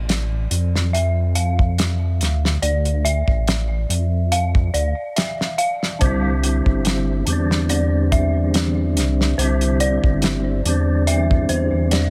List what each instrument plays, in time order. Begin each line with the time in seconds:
Already playing: detuned saw bass A1, synth bell D5
0.09 snare, closed hi-hat
0.51 detuned saw bass F2, closed hi-hat
0.75 snare
0.93 synth bell E5, closed hi-hat
1.35 synth bell F5, closed hi-hat
1.59 kick
1.78 snare, closed hi-hat
2.20 detuned saw bass D2, snare, closed hi-hat
2.45 snare
2.62 detuned saw bass D2, synth bell D5, closed hi-hat
2.85 closed hi-hat
3.05 synth bell E5, closed hi-hat
3.28 detuned saw bass A1, kick
3.47 snare, closed hi-hat
3.89 detuned saw bass F2, closed hi-hat
4.32 synth bell F5, closed hi-hat
4.55 kick
4.74 detuned saw bass D2, synth bell D5, closed hi-hat
5.16 synth bell E5, snare, closed hi-hat
5.41 snare
5.58 synth bell F5, closed hi-hat
5.83 snare
5.99 detuned saw bass C2, tonewheel organ D3 G3, synth bell C5, kick, closed hi-hat
6.03 tonewheel organ C4 E4
6.44 closed hi-hat
6.66 detuned saw bass G1, kick
6.85 snare, closed hi-hat
7.26 detuned saw bass E2, tonewheel organ D3 G3, closed hi-hat
7.30 tonewheel organ C4 D4
7.51 snare
7.69 synth bell D5, closed hi-hat
8.12 synth bell E5, kick, closed hi-hat
8.54 snare, closed hi-hat
8.96 detuned saw bass C2, snare, closed hi-hat
9.21 snare
9.37 detuned saw bass C2, tonewheel organ D3 G3, synth bell C5, closed hi-hat
9.42 tonewheel organ C4 E4
9.61 closed hi-hat
9.80 synth bell D5, closed hi-hat
10.04 detuned saw bass G1, kick
10.22 snare, closed hi-hat
10.64 detuned saw bass E2, tonewheel organ D3 G3, closed hi-hat
10.68 tonewheel organ C4 D4
11.07 synth bell E5, closed hi-hat
11.31 kick
11.49 detuned saw bass E2, synth bell C5, closed hi-hat
11.72 detuned saw bass E2
11.91 synth bell D5, snare, closed hi-hat